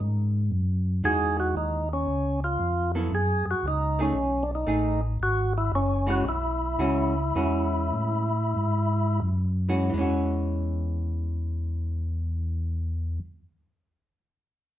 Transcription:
Already playing: D#3 C#4
0.00 G#2
0.52 F#2
1.03 E2 E3 G#3 D#4 F#4 G#4
1.40 F#4
1.56 D#2 D#4
1.93 C#4
2.07 C#2
2.44 F4
2.59 F2
2.95 F#3 B3 E4 A4
3.11 F#2 G#4
3.46 F#2
3.51 F#4
3.63 C#2
3.68 D#4
3.99 A3 C#4 D#4 G#4
4.15 B1
4.43 D4
4.55 D#4
4.67 A1 A3 D#4 G#4
5.20 G#1 F#4
5.58 E4
5.72 F#1 C#4
6.06 E3 G#3 C#4 F#4
6.25 B1 E4
6.78 C#2 E3 G#3 C#4 F#4
7.35 E2 E3 G#3 C#4 F#4
7.94 A2
8.56 G#2
9.22 F#2
9.69 E3 G#3 C#4 F#4
9.89 E2 E3
9.94 G#3
9.98 C#4 F#4

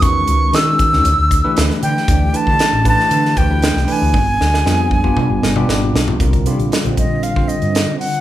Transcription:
Already playing: E2 D#3 G#3 C#4 F#4 B4
0.02 C#6, kick, closed hi-hat
0.28 C#2, closed hi-hat
0.53 D#3 G#3 C#4 F#4 G#4 E6, snare, closed hi-hat
0.79 kick, closed hi-hat
0.93 D#2 D#3 G#3 C#4 F#4 C#5, snare
1.05 D2, closed hi-hat
1.18 D2
1.31 kick, closed hi-hat
1.44 E3 A3 D4 G4 B4
1.57 D2, snare, closed hi-hat
1.71 snare
1.83 D3 G5, closed hi-hat
1.97 snare
2.08 D2 E3 A3 D4 G4 D5, kick, closed hi-hat
2.33 E3 A3 D4 G4 B4 A5, closed hi-hat
2.47 D3, kick
2.59 snare, closed hi-hat
2.73 A1
2.84 E3 A3 D4 G4 B4, kick, closed hi-hat
2.89 A5
3.00 snare
3.11 D3, closed hi-hat
3.25 snare
3.37 D2 G5, kick, closed hi-hat
3.50 E3 A3 D4 G4 B4
3.62 snare, closed hi-hat
3.75 C2, snare
3.87 E3 A3 D4 G4 B4, open hi-hat
3.92 G#5
4.02 D2
4.14 G1, kick, high tom
4.40 D2, snare
4.54 snare
4.65 F2 G3 B3 D4 F4 G#4, snare
4.91 kick
5.04 G1 G3 B3 D4 F4 G4, kick
5.17 mid tom
5.30 G1
5.43 G1, snare
5.56 G3 B3 D4 F4 G4, mid tom
5.68 G#1, snare
5.94 B1, snare
6.08 floor tom
6.20 C2 D3 G3 C4 F4 A#4, kick, closed hi-hat
6.33 kick, closed hi-hat
6.45 C3 D3 G3 C4 F4 G4, closed hi-hat
6.58 A#1, closed hi-hat
6.72 snare, closed hi-hat
6.84 A#1 D3 G3 C4 F4 C5, closed hi-hat
6.97 D#5, kick, closed hi-hat
7.23 F5, closed hi-hat
7.36 D3 G3 C4 F4 C5, kick
7.48 D#5, closed hi-hat
7.62 G2, closed hi-hat
7.75 snare, closed hi-hat
7.99 F#5, open hi-hat
8.14 closed hi-hat

